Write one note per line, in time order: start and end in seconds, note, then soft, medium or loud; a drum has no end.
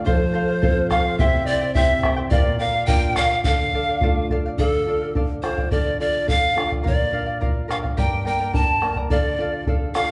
0.06 1.16 F3 medium
0.06 0.32 A4 medium
0.06 0.91 C5 medium
0.06 0.33 C5 medium
0.06 0.14 D5 medium
0.06 0.34 F5 medium
0.06 bombo low medium
0.13 0.92 C5 medium
0.34 0.48 A4 medium
0.34 0.49 C5 medium
0.34 0.46 F5 medium
0.48 0.62 C5 soft
0.48 0.62 F5 soft
0.62 1.17 C4 medium
0.62 1.18 F4 soft
0.62 0.89 A4 medium
0.62 1.18 A4 medium
0.62 0.89 C5 medium
0.62 0.90 F5 medium
0.62 bombo low medium
0.90 1.05 A4 medium
0.90 1.05 C5 medium
0.90 1.18 F5 medium
0.90 1.04 F5 medium
0.90 bombo rim soft
0.90 bombo low medium
1.05 1.19 C5 soft
1.05 1.19 F5 medium
1.18 2.29 C3 medium
1.18 1.47 E4 medium
1.18 1.48 G4 medium
1.18 1.47 C5 medium
1.18 1.48 E5 medium
1.18 1.47 E5 medium
1.18 1.48 G5 medium
1.18 bombo low medium
1.46 1.61 E4 medium
1.46 1.61 C5 medium
1.46 1.73 D5 medium
1.46 1.74 D5 medium
1.46 1.62 E5 medium
1.46 1.60 G5 medium
1.61 1.75 E4 soft
1.61 1.75 C5 soft
1.61 1.75 G5 medium
1.74 2.31 C4 medium
1.74 2.03 E4 medium
1.74 2.31 E4 medium
1.74 2.31 G4 medium
1.74 2.03 C5 medium
1.74 2.14 E5 medium
1.74 2.14 E5 loud
1.74 2.03 E5 medium
1.74 2.04 G5 medium
1.74 bombo low medium
2.03 2.17 E4 medium
2.03 2.17 C5 medium
2.03 2.18 E5 medium
2.03 2.15 G5 medium
2.03 bombo rim soft
2.03 bombo low medium
2.16 2.31 E4 soft
2.16 2.31 C5 soft
2.16 2.31 G5 medium
2.30 3.41 A#2 medium
2.30 2.59 A#4 medium
2.30 2.57 D5 medium
2.30 2.58 D5 medium
2.30 2.60 D5 medium
2.30 2.60 F5 medium
2.30 bombo low medium
2.58 2.74 A#4 medium
2.58 2.75 D5 medium
2.58 2.88 F5 loud
2.58 2.73 F5 medium
2.58 2.64 G5 medium
2.63 2.88 F5 medium
2.75 2.87 D5 soft
2.75 2.88 F5 medium
2.86 3.43 A#3 medium
2.86 3.43 D4 soft
2.86 3.44 F4 medium
2.86 3.15 A#4 medium
2.86 3.16 D5 medium
2.86 3.17 F5 medium
2.86 3.18 G5 loud
2.86 3.18 G5 medium
2.86 bombo low medium
3.16 3.31 A#4 medium
3.16 3.31 D5 medium
3.16 3.43 F5 medium
3.16 3.44 F5 medium
3.16 3.30 F5 medium
3.16 bombo rim soft
3.16 bombo low soft
3.31 3.46 D5 soft
3.31 3.45 F5 medium
3.44 4.55 D3 medium
3.44 3.73 A4 medium
3.44 3.74 D5 medium
3.44 4.25 F5 medium
3.44 4.26 F5 medium
3.44 3.74 F5 medium
3.44 bombo low medium
3.73 3.88 A4 medium
3.73 3.88 D5 medium
3.73 3.88 F5 medium
3.73 bombo low soft
3.89 4.02 D5 soft
3.89 4.02 F5 medium
4.01 4.56 A3 soft
4.01 4.56 D4 soft
4.01 4.56 F4 medium
4.01 4.30 A4 medium
4.01 4.30 D5 medium
4.01 4.31 F5 medium
4.01 bombo low medium
4.30 4.45 A4 medium
4.30 4.45 D5 medium
4.30 4.44 F5 medium
4.30 bombo low medium
4.46 4.58 D5 medium
4.46 4.59 F5 medium
4.58 5.68 D3 medium
4.58 5.11 A4 medium
4.58 4.86 A4 medium
4.58 4.87 D5 medium
4.58 4.88 F5 medium
4.58 bombo low medium
4.86 5.14 F4 soft
4.86 5.01 A4 medium
4.86 5.02 D5 medium
4.86 5.00 F5 medium
5.01 5.15 D5 soft
5.01 5.15 F5 soft
5.15 5.42 D4 medium
5.15 5.42 A4 medium
5.15 5.43 D5 medium
5.15 5.44 F5 medium
5.15 bombo low medium
5.43 5.71 F4 medium
5.43 5.57 A4 medium
5.43 5.69 C5 medium
5.43 5.57 D5 medium
5.43 5.56 F5 medium
5.43 bombo rim soft
5.57 5.71 D5 soft
5.57 5.71 F5 soft
5.57 bombo low medium
5.71 6.82 D3 medium
5.71 5.99 A4 medium
5.71 5.98 D5 medium
5.71 6.00 D5 medium
5.71 6.00 F5 medium
5.71 bombo low medium
6.00 6.27 F4 soft
6.00 6.14 A4 medium
6.00 6.30 D5 medium
6.00 6.13 D5 medium
6.00 6.11 F5 medium
6.14 6.27 D5 soft
6.27 6.55 D4 medium
6.27 6.54 A4 medium
6.27 6.55 D5 medium
6.27 6.55 F5 medium
6.27 6.71 F5 medium
6.27 bombo low medium
6.55 6.84 F4 medium
6.55 6.70 A4 medium
6.55 6.69 D5 medium
6.55 6.68 F5 medium
6.55 bombo rim soft
6.69 6.82 D5 soft
6.69 6.83 F5 medium
6.69 bombo low medium
6.83 7.94 A#2 medium
6.83 7.11 A#4 medium
6.83 7.12 D5 medium
6.83 7.13 F5 medium
6.83 bombo low medium
6.88 7.39 D5 medium
7.13 7.40 D4 soft
7.13 7.27 A#4 medium
7.13 7.26 D5 medium
7.13 7.25 F5 medium
7.26 7.40 D5 soft
7.26 7.41 F5 medium
7.41 7.69 F4 medium
7.41 7.67 A#4 medium
7.41 7.67 D5 medium
7.41 7.68 F5 medium
7.41 bombo low medium
7.68 7.97 D4 medium
7.68 7.83 A#4 medium
7.68 7.83 D5 medium
7.68 7.82 F5 medium
7.68 7.77 F5 medium
7.68 bombo rim soft
7.83 7.97 D5 soft
7.83 7.97 F5 medium
7.83 bombo low soft
7.97 9.07 G2 medium
7.97 8.26 G4 medium
7.97 8.25 A#4 medium
7.97 8.25 D5 medium
7.97 8.24 G5 medium
7.97 8.26 A#5 medium
7.97 bombo low medium
8.25 8.53 A#3 soft
8.25 8.40 A#4 medium
8.25 8.39 D5 medium
8.25 8.39 G5 medium
8.25 8.56 G5 medium
8.25 8.57 G5 medium
8.25 8.39 A#5 medium
8.40 8.52 A#4 soft
8.40 8.52 D5 soft
8.40 8.53 A#5 soft
8.53 8.81 D4 medium
8.53 8.81 A#4 medium
8.53 8.81 D5 medium
8.53 8.80 G5 medium
8.53 8.97 A5 medium
8.53 8.81 A#5 medium
8.53 bombo low medium
8.81 9.10 A#3 soft
8.81 8.96 A#4 medium
8.81 8.96 D5 medium
8.81 8.96 G5 medium
8.81 8.96 A#5 medium
8.81 bombo rim soft
8.96 9.10 A#4 soft
8.96 9.10 D5 soft
8.96 9.11 A#5 medium
8.96 bombo low soft
9.10 10.11 D3 medium
9.10 9.38 A4 medium
9.10 9.39 D5 medium
9.10 9.63 D5 medium
9.10 9.39 F5 medium
9.10 bombo low medium
9.39 9.66 F4 soft
9.39 9.53 A4 soft
9.39 9.52 D5 medium
9.39 9.51 F5 medium
9.52 9.67 D5 soft
9.52 9.67 F5 soft
9.67 9.94 A4 medium
9.67 9.94 D5 medium
9.67 9.95 F5 medium
9.67 bombo low medium
9.95 10.11 F4 medium
9.95 10.09 A4 medium
9.95 10.09 D5 medium
9.95 10.11 F5 medium
9.95 10.08 F5 medium
9.95 10.11 F5 medium
9.95 bombo rim soft